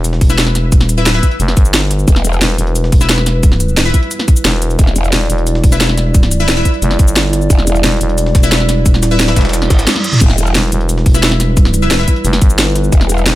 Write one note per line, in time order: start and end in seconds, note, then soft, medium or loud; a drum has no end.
0.00 0.81 E1 loud
0.00 13.35 G3 medium
0.00 13.35 E4 medium
0.00 4.77 B4 loud
0.00 impact medium
0.04 closed hi-hat medium
0.04 cabasa medium
0.13 snare medium
0.21 kick loud
0.21 closed hi-hat loud
0.21 open hi-hat medium
0.30 0.96 E4 medium
0.30 0.96 B4 medium
0.30 0.96 E5 medium
0.30 snare soft
0.30 cabasa medium
0.38 snare loud
0.38 closed hi-hat medium
0.38 cabasa soft
0.47 snare medium
0.55 snare medium
0.55 closed hi-hat loud
0.55 closed hi-hat medium
0.72 kick loud
0.72 closed hi-hat medium
0.72 cabasa soft
0.81 1.08 D#1 loud
0.81 snare soft
0.81 snare medium
0.89 closed hi-hat medium
0.89 cabasa medium
0.98 1.06 E4 medium
0.98 1.06 B4 medium
0.98 1.06 E5 medium
0.98 cabasa soft
1.06 1.22 D1 loud
1.06 snare loud
1.06 closed hi-hat medium
1.06 cabasa medium
1.15 1.28 E4 medium
1.15 1.28 B4 medium
1.15 1.28 E5 medium
1.23 kick medium
1.23 closed hi-hat loud
1.23 closed hi-hat medium
1.23 cabasa soft
1.31 closed hi-hat soft
1.40 1.55 F1 loud
1.40 closed hi-hat medium
1.40 cabasa soft
1.48 snare medium
1.57 2.06 G1 medium
1.57 kick loud
1.57 closed hi-hat loud
1.57 closed hi-hat medium
1.57 cabasa soft
1.65 cabasa medium
1.74 snare loud
1.74 closed hi-hat medium
1.74 cabasa medium
1.91 snare soft
1.91 closed hi-hat loud
1.91 closed hi-hat medium
1.99 cabasa soft
2.08 2.40 E1 loud
2.08 kick loud
2.08 closed hi-hat medium
2.08 cabasa soft
2.16 snare medium
2.25 closed hi-hat medium
2.25 cabasa medium
2.33 closed hi-hat soft
2.33 cabasa soft
2.42 2.57 E1 medium
2.42 snare loud
2.42 closed hi-hat medium
2.42 cabasa soft
2.50 closed hi-hat soft
2.58 3.93 E1 loud
2.58 closed hi-hat medium
2.58 cabasa soft
2.67 closed hi-hat soft
2.75 closed hi-hat medium
2.75 cabasa soft
2.84 snare medium
2.92 kick loud
2.92 closed hi-hat medium
2.92 open hi-hat medium
3.01 3.67 E4 medium
3.01 3.67 B4 medium
3.01 3.67 E5 medium
3.01 snare soft
3.01 cabasa medium
3.09 snare loud
3.09 closed hi-hat medium
3.09 cabasa soft
3.18 snare medium
3.26 snare medium
3.26 closed hi-hat medium
3.43 kick loud
3.43 closed hi-hat medium
3.43 cabasa soft
3.52 snare soft
3.52 snare medium
3.60 closed hi-hat medium
3.60 cabasa medium
3.69 cabasa soft
3.77 snare loud
3.77 closed hi-hat medium
3.77 cabasa soft
3.86 3.99 E4 medium
3.86 3.99 B4 medium
3.86 3.99 E5 medium
3.94 kick medium
3.94 closed hi-hat medium
3.94 cabasa soft
4.03 closed hi-hat soft
4.11 closed hi-hat medium
4.11 cabasa medium
4.19 snare soft
4.19 snare medium
4.28 kick loud
4.28 closed hi-hat medium
4.28 cabasa soft
4.36 closed hi-hat soft
4.36 cabasa medium
4.45 4.78 E1 loud
4.45 snare loud
4.45 closed hi-hat medium
4.45 cabasa soft
4.54 closed hi-hat soft
4.62 closed hi-hat medium
4.70 closed hi-hat soft
4.70 cabasa soft
4.79 5.11 E1 loud
4.79 10.19 D5 loud
4.79 kick loud
4.79 closed hi-hat medium
4.79 cabasa soft
4.87 snare medium
4.96 closed hi-hat medium
4.96 cabasa medium
5.04 closed hi-hat soft
5.04 cabasa soft
5.13 5.28 E1 medium
5.13 snare loud
5.13 closed hi-hat medium
5.13 cabasa soft
5.21 closed hi-hat soft
5.30 6.64 E1 loud
5.30 closed hi-hat loud
5.30 closed hi-hat medium
5.30 cabasa soft
5.38 closed hi-hat soft
5.47 closed hi-hat medium
5.47 cabasa medium
5.55 snare medium
5.64 kick loud
5.64 closed hi-hat medium
5.64 open hi-hat medium
5.72 6.38 E4 medium
5.72 6.38 B4 medium
5.72 6.38 E5 medium
5.72 snare soft
5.72 cabasa medium
5.80 snare loud
5.80 closed hi-hat medium
5.80 cabasa medium
5.89 snare medium
5.97 snare soft
5.97 closed hi-hat medium
6.14 kick loud
6.14 closed hi-hat medium
6.14 cabasa medium
6.23 snare soft
6.23 snare medium
6.31 closed hi-hat medium
6.31 cabasa medium
6.40 6.48 E4 medium
6.40 6.48 B4 medium
6.40 6.48 E5 medium
6.40 cabasa soft
6.48 snare loud
6.48 closed hi-hat medium
6.48 cabasa medium
6.57 6.70 E4 medium
6.57 6.70 B4 medium
6.57 6.70 E5 medium
6.65 kick medium
6.65 closed hi-hat loud
6.65 closed hi-hat medium
6.65 cabasa soft
6.74 closed hi-hat soft
6.82 6.98 F1 loud
6.82 closed hi-hat medium
6.82 cabasa medium
6.91 snare medium
6.99 7.49 G1 medium
6.99 kick loud
6.99 closed hi-hat medium
6.99 cabasa soft
7.08 cabasa medium
7.16 snare loud
7.16 closed hi-hat medium
7.16 cabasa medium
7.33 snare soft
7.33 closed hi-hat loud
7.33 closed hi-hat medium
7.42 cabasa soft
7.50 7.83 E1 loud
7.50 kick loud
7.50 closed hi-hat medium
7.50 cabasa medium
7.59 snare medium
7.67 closed hi-hat loud
7.67 closed hi-hat medium
7.67 cabasa medium
7.75 closed hi-hat soft
7.75 cabasa soft
7.84 8.00 E1 loud
7.84 snare loud
7.84 closed hi-hat medium
7.84 cabasa medium
7.92 closed hi-hat soft
8.01 8.95 E1 loud
8.01 closed hi-hat loud
8.01 closed hi-hat medium
8.01 cabasa soft
8.09 closed hi-hat soft
8.18 closed hi-hat medium
8.18 cabasa medium
8.26 snare medium
8.35 kick loud
8.35 snare loud
8.35 closed hi-hat loud
8.35 closed hi-hat medium
8.43 9.09 E4 medium
8.43 9.09 B4 medium
8.43 9.09 E5 medium
8.43 snare soft
8.43 cabasa medium
8.52 snare loud
8.52 closed hi-hat medium
8.52 cabasa medium
8.60 snare medium
8.69 snare soft
8.69 closed hi-hat loud
8.69 closed hi-hat medium
8.86 kick loud
8.86 closed hi-hat medium
8.86 cabasa medium
8.94 9.22 D#1 loud
8.94 snare soft
8.94 snare medium
9.03 snare loud
9.03 closed hi-hat loud
9.03 closed hi-hat medium
9.03 cabasa medium
9.11 9.20 E4 medium
9.11 9.20 B4 medium
9.11 9.20 E5 medium
9.11 closed hi-hat soft
9.11 cabasa soft
9.20 9.35 D1 loud
9.20 snare loud
9.20 closed hi-hat medium
9.20 cabasa medium
9.28 9.42 E4 medium
9.28 9.42 B4 medium
9.28 9.42 E5 medium
9.28 snare loud
9.28 closed hi-hat medium
9.36 9.69 E1 loud
9.36 kick medium
9.36 snare medium
9.36 closed hi-hat loud
9.36 closed hi-hat medium
9.36 cabasa soft
9.41 snare medium
9.41 closed hi-hat medium
9.45 snare medium
9.45 closed hi-hat medium
9.49 snare loud
9.49 closed hi-hat medium
9.53 snare loud
9.53 closed hi-hat medium
9.53 reverse cymbal medium
9.53 cabasa medium
9.62 snare medium
9.62 closed hi-hat soft
9.70 9.87 G1 medium
9.70 kick loud
9.70 snare loud
9.70 closed hi-hat loud
9.70 closed hi-hat medium
9.70 cabasa soft
9.79 snare loud
9.79 closed hi-hat medium
9.79 cabasa medium
9.87 snare loud
9.87 closed hi-hat medium
9.87 high tom medium
9.87 cabasa medium
9.96 snare medium
9.96 high tom medium
10.04 snare soft
10.04 closed hi-hat loud
10.04 closed hi-hat medium
10.13 mid tom medium
10.13 cabasa soft
10.21 10.54 E1 loud
10.21 13.35 B4 loud
10.21 kick loud
10.21 closed hi-hat medium
10.21 crash medium
10.21 cabasa soft
10.30 snare medium
10.38 closed hi-hat loud
10.38 closed hi-hat medium
10.38 cabasa medium
10.47 closed hi-hat soft
10.47 cabasa soft
10.55 10.71 E1 loud
10.55 snare loud
10.55 closed hi-hat medium
10.55 cabasa medium
10.64 closed hi-hat soft
10.72 12.06 E1 loud
10.72 closed hi-hat medium
10.72 cabasa soft
10.81 closed hi-hat soft
10.89 closed hi-hat medium
10.89 cabasa medium
10.98 snare medium
11.06 kick loud
11.06 closed hi-hat medium
11.06 open hi-hat medium
11.14 11.80 E4 medium
11.14 11.80 B4 medium
11.14 11.80 E5 medium
11.14 snare soft
11.14 cabasa medium
11.23 snare loud
11.23 closed hi-hat medium
11.23 cabasa medium
11.31 snare medium
11.40 snare medium
11.40 closed hi-hat loud
11.40 closed hi-hat medium
11.57 kick loud
11.57 closed hi-hat medium
11.57 cabasa soft
11.65 snare soft
11.65 snare medium
11.74 closed hi-hat medium
11.74 cabasa medium
11.82 11.91 E4 medium
11.82 11.91 B4 medium
11.82 11.91 E5 medium
11.82 cabasa soft
11.91 snare loud
11.91 closed hi-hat medium
11.91 cabasa soft
11.99 12.13 E4 medium
11.99 12.13 B4 medium
11.99 12.13 E5 medium
12.08 kick medium
12.08 closed hi-hat medium
12.08 cabasa soft
12.16 closed hi-hat soft
12.25 12.40 F1 loud
12.25 closed hi-hat medium
12.25 cabasa medium
12.33 snare soft
12.33 snare medium
12.42 12.91 G1 medium
12.42 kick loud
12.42 closed hi-hat medium
12.42 cabasa soft
12.50 cabasa medium
12.58 snare loud
12.58 closed hi-hat medium
12.58 cabasa medium
12.75 snare soft
12.75 closed hi-hat loud
12.75 closed hi-hat medium
12.84 cabasa soft
12.92 13.25 E1 loud
12.92 kick loud
12.92 closed hi-hat medium
12.92 cabasa soft
13.01 snare medium
13.09 closed hi-hat medium
13.09 cabasa medium
13.18 closed hi-hat soft
13.18 cabasa soft
13.26 13.35 E1 medium
13.26 snare loud
13.26 closed hi-hat medium
13.26 cabasa soft